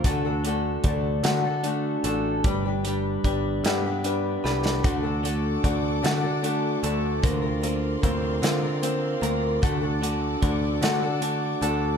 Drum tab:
HH |x-x-x-x-x-x-|x-x-x-x-x---|x-x-x-x-x-x-|x-x-x-x-x-x-|
SD |------o-----|------o---oo|------o-----|------o-----|
BD |o---o-------|o---o-------|o---o-------|o---o-------|

HH |x-x-x-x-x-x-|
SD |------o-----|
BD |o---o-------|